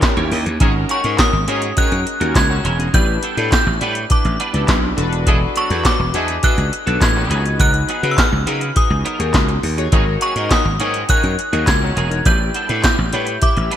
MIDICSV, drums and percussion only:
0, 0, Header, 1, 2, 480
1, 0, Start_track
1, 0, Key_signature, 5, "minor"
1, 0, Tempo, 582524
1, 499, Time_signature, 4, 2, 24, 8
1, 11342, End_track
2, 0, Start_track
2, 0, Title_t, "Drums"
2, 17, Note_on_c, 9, 42, 82
2, 19, Note_on_c, 9, 36, 114
2, 21, Note_on_c, 9, 39, 90
2, 24, Note_on_c, 9, 38, 113
2, 100, Note_off_c, 9, 42, 0
2, 101, Note_off_c, 9, 36, 0
2, 103, Note_off_c, 9, 39, 0
2, 106, Note_off_c, 9, 38, 0
2, 139, Note_on_c, 9, 42, 34
2, 222, Note_off_c, 9, 42, 0
2, 260, Note_on_c, 9, 46, 66
2, 342, Note_off_c, 9, 46, 0
2, 381, Note_on_c, 9, 42, 49
2, 464, Note_off_c, 9, 42, 0
2, 496, Note_on_c, 9, 42, 102
2, 499, Note_on_c, 9, 36, 122
2, 579, Note_off_c, 9, 42, 0
2, 581, Note_off_c, 9, 36, 0
2, 735, Note_on_c, 9, 42, 84
2, 818, Note_off_c, 9, 42, 0
2, 857, Note_on_c, 9, 42, 52
2, 939, Note_off_c, 9, 42, 0
2, 976, Note_on_c, 9, 42, 90
2, 977, Note_on_c, 9, 39, 83
2, 979, Note_on_c, 9, 36, 108
2, 980, Note_on_c, 9, 38, 109
2, 1059, Note_off_c, 9, 42, 0
2, 1060, Note_off_c, 9, 39, 0
2, 1061, Note_off_c, 9, 36, 0
2, 1063, Note_off_c, 9, 38, 0
2, 1217, Note_on_c, 9, 42, 81
2, 1300, Note_off_c, 9, 42, 0
2, 1333, Note_on_c, 9, 42, 60
2, 1415, Note_off_c, 9, 42, 0
2, 1457, Note_on_c, 9, 42, 94
2, 1462, Note_on_c, 9, 36, 111
2, 1539, Note_off_c, 9, 42, 0
2, 1544, Note_off_c, 9, 36, 0
2, 1581, Note_on_c, 9, 42, 38
2, 1663, Note_off_c, 9, 42, 0
2, 1703, Note_on_c, 9, 42, 74
2, 1785, Note_off_c, 9, 42, 0
2, 1821, Note_on_c, 9, 42, 58
2, 1903, Note_off_c, 9, 42, 0
2, 1939, Note_on_c, 9, 36, 120
2, 1940, Note_on_c, 9, 42, 86
2, 1943, Note_on_c, 9, 39, 87
2, 1946, Note_on_c, 9, 38, 112
2, 2022, Note_off_c, 9, 36, 0
2, 2022, Note_off_c, 9, 42, 0
2, 2025, Note_off_c, 9, 39, 0
2, 2028, Note_off_c, 9, 38, 0
2, 2183, Note_on_c, 9, 42, 77
2, 2265, Note_off_c, 9, 42, 0
2, 2305, Note_on_c, 9, 42, 50
2, 2387, Note_off_c, 9, 42, 0
2, 2421, Note_on_c, 9, 36, 113
2, 2421, Note_on_c, 9, 42, 90
2, 2503, Note_off_c, 9, 36, 0
2, 2504, Note_off_c, 9, 42, 0
2, 2658, Note_on_c, 9, 42, 80
2, 2741, Note_off_c, 9, 42, 0
2, 2781, Note_on_c, 9, 42, 54
2, 2863, Note_off_c, 9, 42, 0
2, 2901, Note_on_c, 9, 36, 110
2, 2901, Note_on_c, 9, 42, 91
2, 2902, Note_on_c, 9, 39, 77
2, 2905, Note_on_c, 9, 38, 101
2, 2983, Note_off_c, 9, 36, 0
2, 2984, Note_off_c, 9, 42, 0
2, 2985, Note_off_c, 9, 39, 0
2, 2988, Note_off_c, 9, 38, 0
2, 3140, Note_on_c, 9, 42, 76
2, 3222, Note_off_c, 9, 42, 0
2, 3256, Note_on_c, 9, 42, 57
2, 3339, Note_off_c, 9, 42, 0
2, 3378, Note_on_c, 9, 42, 99
2, 3382, Note_on_c, 9, 36, 114
2, 3460, Note_off_c, 9, 42, 0
2, 3465, Note_off_c, 9, 36, 0
2, 3500, Note_on_c, 9, 42, 40
2, 3583, Note_off_c, 9, 42, 0
2, 3624, Note_on_c, 9, 42, 72
2, 3707, Note_off_c, 9, 42, 0
2, 3740, Note_on_c, 9, 42, 57
2, 3822, Note_off_c, 9, 42, 0
2, 3857, Note_on_c, 9, 42, 87
2, 3859, Note_on_c, 9, 36, 119
2, 3861, Note_on_c, 9, 39, 90
2, 3864, Note_on_c, 9, 38, 119
2, 3940, Note_off_c, 9, 42, 0
2, 3941, Note_off_c, 9, 36, 0
2, 3943, Note_off_c, 9, 39, 0
2, 3946, Note_off_c, 9, 38, 0
2, 4101, Note_on_c, 9, 42, 71
2, 4184, Note_off_c, 9, 42, 0
2, 4223, Note_on_c, 9, 42, 50
2, 4306, Note_off_c, 9, 42, 0
2, 4340, Note_on_c, 9, 36, 121
2, 4340, Note_on_c, 9, 42, 95
2, 4422, Note_off_c, 9, 36, 0
2, 4422, Note_off_c, 9, 42, 0
2, 4578, Note_on_c, 9, 42, 81
2, 4661, Note_off_c, 9, 42, 0
2, 4700, Note_on_c, 9, 42, 53
2, 4783, Note_off_c, 9, 42, 0
2, 4819, Note_on_c, 9, 42, 88
2, 4820, Note_on_c, 9, 36, 108
2, 4820, Note_on_c, 9, 39, 79
2, 4823, Note_on_c, 9, 38, 107
2, 4901, Note_off_c, 9, 42, 0
2, 4902, Note_off_c, 9, 39, 0
2, 4903, Note_off_c, 9, 36, 0
2, 4905, Note_off_c, 9, 38, 0
2, 5058, Note_on_c, 9, 42, 83
2, 5141, Note_off_c, 9, 42, 0
2, 5175, Note_on_c, 9, 42, 57
2, 5258, Note_off_c, 9, 42, 0
2, 5297, Note_on_c, 9, 42, 96
2, 5302, Note_on_c, 9, 36, 112
2, 5379, Note_off_c, 9, 42, 0
2, 5384, Note_off_c, 9, 36, 0
2, 5421, Note_on_c, 9, 42, 38
2, 5503, Note_off_c, 9, 42, 0
2, 5545, Note_on_c, 9, 42, 75
2, 5627, Note_off_c, 9, 42, 0
2, 5662, Note_on_c, 9, 42, 56
2, 5744, Note_off_c, 9, 42, 0
2, 5779, Note_on_c, 9, 36, 117
2, 5780, Note_on_c, 9, 42, 91
2, 5783, Note_on_c, 9, 39, 91
2, 5787, Note_on_c, 9, 38, 114
2, 5861, Note_off_c, 9, 36, 0
2, 5863, Note_off_c, 9, 42, 0
2, 5866, Note_off_c, 9, 39, 0
2, 5869, Note_off_c, 9, 38, 0
2, 6021, Note_on_c, 9, 42, 78
2, 6103, Note_off_c, 9, 42, 0
2, 6143, Note_on_c, 9, 42, 54
2, 6225, Note_off_c, 9, 42, 0
2, 6259, Note_on_c, 9, 36, 118
2, 6259, Note_on_c, 9, 42, 98
2, 6341, Note_off_c, 9, 36, 0
2, 6341, Note_off_c, 9, 42, 0
2, 6376, Note_on_c, 9, 42, 38
2, 6459, Note_off_c, 9, 42, 0
2, 6498, Note_on_c, 9, 42, 81
2, 6581, Note_off_c, 9, 42, 0
2, 6621, Note_on_c, 9, 42, 56
2, 6703, Note_off_c, 9, 42, 0
2, 6739, Note_on_c, 9, 36, 113
2, 6740, Note_on_c, 9, 42, 90
2, 6741, Note_on_c, 9, 39, 86
2, 6744, Note_on_c, 9, 38, 104
2, 6821, Note_off_c, 9, 36, 0
2, 6822, Note_off_c, 9, 42, 0
2, 6823, Note_off_c, 9, 39, 0
2, 6826, Note_off_c, 9, 38, 0
2, 6979, Note_on_c, 9, 42, 82
2, 7062, Note_off_c, 9, 42, 0
2, 7096, Note_on_c, 9, 42, 59
2, 7179, Note_off_c, 9, 42, 0
2, 7217, Note_on_c, 9, 42, 98
2, 7221, Note_on_c, 9, 36, 110
2, 7300, Note_off_c, 9, 42, 0
2, 7303, Note_off_c, 9, 36, 0
2, 7462, Note_on_c, 9, 42, 75
2, 7545, Note_off_c, 9, 42, 0
2, 7579, Note_on_c, 9, 42, 59
2, 7662, Note_off_c, 9, 42, 0
2, 7694, Note_on_c, 9, 42, 82
2, 7696, Note_on_c, 9, 36, 117
2, 7698, Note_on_c, 9, 39, 94
2, 7701, Note_on_c, 9, 38, 124
2, 7777, Note_off_c, 9, 42, 0
2, 7779, Note_off_c, 9, 36, 0
2, 7780, Note_off_c, 9, 39, 0
2, 7783, Note_off_c, 9, 38, 0
2, 7816, Note_on_c, 9, 42, 34
2, 7899, Note_off_c, 9, 42, 0
2, 7938, Note_on_c, 9, 46, 72
2, 8020, Note_off_c, 9, 46, 0
2, 8060, Note_on_c, 9, 42, 53
2, 8143, Note_off_c, 9, 42, 0
2, 8175, Note_on_c, 9, 42, 99
2, 8177, Note_on_c, 9, 36, 120
2, 8257, Note_off_c, 9, 42, 0
2, 8259, Note_off_c, 9, 36, 0
2, 8413, Note_on_c, 9, 42, 82
2, 8496, Note_off_c, 9, 42, 0
2, 8535, Note_on_c, 9, 42, 57
2, 8618, Note_off_c, 9, 42, 0
2, 8657, Note_on_c, 9, 42, 87
2, 8658, Note_on_c, 9, 36, 104
2, 8658, Note_on_c, 9, 39, 80
2, 8661, Note_on_c, 9, 38, 112
2, 8739, Note_off_c, 9, 42, 0
2, 8740, Note_off_c, 9, 36, 0
2, 8740, Note_off_c, 9, 39, 0
2, 8743, Note_off_c, 9, 38, 0
2, 8896, Note_on_c, 9, 42, 85
2, 8978, Note_off_c, 9, 42, 0
2, 9014, Note_on_c, 9, 42, 59
2, 9096, Note_off_c, 9, 42, 0
2, 9136, Note_on_c, 9, 42, 105
2, 9141, Note_on_c, 9, 36, 108
2, 9218, Note_off_c, 9, 42, 0
2, 9223, Note_off_c, 9, 36, 0
2, 9258, Note_on_c, 9, 42, 38
2, 9341, Note_off_c, 9, 42, 0
2, 9383, Note_on_c, 9, 42, 73
2, 9465, Note_off_c, 9, 42, 0
2, 9501, Note_on_c, 9, 42, 56
2, 9583, Note_off_c, 9, 42, 0
2, 9617, Note_on_c, 9, 42, 89
2, 9618, Note_on_c, 9, 36, 126
2, 9620, Note_on_c, 9, 39, 97
2, 9624, Note_on_c, 9, 38, 112
2, 9699, Note_off_c, 9, 42, 0
2, 9700, Note_off_c, 9, 36, 0
2, 9703, Note_off_c, 9, 39, 0
2, 9706, Note_off_c, 9, 38, 0
2, 9862, Note_on_c, 9, 42, 80
2, 9944, Note_off_c, 9, 42, 0
2, 9982, Note_on_c, 9, 42, 53
2, 10065, Note_off_c, 9, 42, 0
2, 10098, Note_on_c, 9, 42, 104
2, 10099, Note_on_c, 9, 36, 115
2, 10180, Note_off_c, 9, 42, 0
2, 10181, Note_off_c, 9, 36, 0
2, 10337, Note_on_c, 9, 42, 83
2, 10419, Note_off_c, 9, 42, 0
2, 10458, Note_on_c, 9, 42, 56
2, 10541, Note_off_c, 9, 42, 0
2, 10576, Note_on_c, 9, 42, 90
2, 10577, Note_on_c, 9, 39, 82
2, 10578, Note_on_c, 9, 36, 101
2, 10581, Note_on_c, 9, 38, 105
2, 10659, Note_off_c, 9, 42, 0
2, 10660, Note_off_c, 9, 39, 0
2, 10661, Note_off_c, 9, 36, 0
2, 10663, Note_off_c, 9, 38, 0
2, 10816, Note_on_c, 9, 42, 79
2, 10898, Note_off_c, 9, 42, 0
2, 10931, Note_on_c, 9, 42, 60
2, 11014, Note_off_c, 9, 42, 0
2, 11055, Note_on_c, 9, 42, 102
2, 11060, Note_on_c, 9, 36, 107
2, 11137, Note_off_c, 9, 42, 0
2, 11143, Note_off_c, 9, 36, 0
2, 11179, Note_on_c, 9, 42, 36
2, 11261, Note_off_c, 9, 42, 0
2, 11301, Note_on_c, 9, 42, 76
2, 11342, Note_off_c, 9, 42, 0
2, 11342, End_track
0, 0, End_of_file